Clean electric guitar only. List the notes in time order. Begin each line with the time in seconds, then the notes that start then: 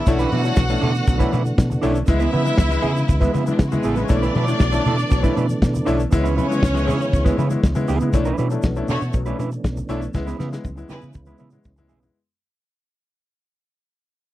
0.06 muted clean electric guitar stroke
0.19 D4 E4 B4
0.32 D4 E4 B4
0.44 muted clean electric guitar stroke
0.70 muted clean electric guitar stroke
0.81 D4 E4 A4
0.94 muted clean electric guitar stroke
1.07 muted clean electric guitar stroke
1.19 D4 E4 B4
1.32 D4 E4 B4
1.45 muted clean electric guitar stroke
1.70 muted clean electric guitar stroke
1.82 D4 E4 A4
1.95 muted clean electric guitar stroke
2.07 muted clean electric guitar stroke
2.19 B3 E4 B4
2.32 B3 E4 B4
2.70 muted clean electric guitar stroke
2.82 B3 E4 G#4
2.95 muted clean electric guitar stroke
3.08 muted clean electric guitar stroke
3.20 B3 E4 B4
3.33 B3 E4 B4
3.46 muted clean electric guitar stroke
3.72 muted clean electric guitar stroke
3.84 B3 E4 G#4
3.97 muted clean electric guitar stroke
4.09 muted clean electric guitar stroke
4.22 D4 E4 B4
4.36 D4 E4 B4
4.74 muted clean electric guitar stroke
4.86 D4 E4 A4
4.99 muted clean electric guitar stroke
5.12 muted clean electric guitar stroke
5.23 D4 E4 B4
5.36 D4 E4 B4
5.74 muted clean electric guitar stroke
5.85 D4 E4 A4
5.99 muted clean electric guitar stroke
6.11 muted clean electric guitar stroke
6.23 B3 E4 B4
6.36 B3 E4 B4
6.50 muted clean electric guitar stroke
6.75 muted clean electric guitar stroke
6.86 B3 E4 G#4
6.99 muted clean electric guitar stroke
7.13 muted clean electric guitar stroke
7.24 B3 E4 B4
7.38 B3 E4 B4
7.50 muted clean electric guitar stroke
7.75 muted clean electric guitar stroke
7.88 B3 E4 G#4
8.01 muted clean electric guitar stroke
8.13 muted clean electric guitar stroke
8.25 D4 E4 B4
8.38 D4 E4 B4
8.51 muted clean electric guitar stroke
8.76 muted clean electric guitar stroke
8.89 D4 E4 A4
9.02 muted clean electric guitar stroke
9.14 muted clean electric guitar stroke
9.26 D4 E4 B4
9.39 D4 E4 B4
9.53 muted clean electric guitar stroke
9.78 muted clean electric guitar stroke
9.89 D4 E4 A4
10.03 muted clean electric guitar stroke
10.15 muted clean electric guitar stroke
10.26 B3 E4 B4
10.38 B3 E4 B4
10.52 muted clean electric guitar stroke
10.76 muted clean electric guitar stroke
10.89 B3 E4 G#4
11.02 muted clean electric guitar stroke
11.14 muted clean electric guitar stroke
11.27 B3 E4 B4
11.39 B3 E4 B4
11.52 muted clean electric guitar stroke
11.76 muted clean electric guitar stroke
11.88 B3 E4 G#4
12.02 muted clean electric guitar stroke